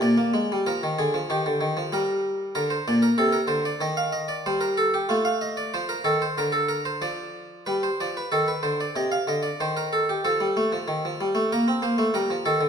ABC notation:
X:1
M:4/4
L:1/16
Q:1/4=94
K:Bbmix
V:1 name="Harpsichord"
d4 B2 A2 G4 B4 | B c d B =A B c d e f e d c B A G | F f e d c B =A c B A B c d4 | =B c d B =A B c d e f e d c _B A G |
=A8 B2 c2 B2 A2 |]
V:2 name="Harpsichord" clef=bass
B,, B, A, G, F, E, D, F, E, D, E, F, G,4 | D,2 B,,2 C,2 D,2 E,4 G,4 | =A,4 F,2 E,2 D,4 F,4 | G,2 F,2 E,2 D,2 C,2 D,2 E,4 |
F, G, =A, F, E, F, G, A, B, C B, A, G, F, E, D, |]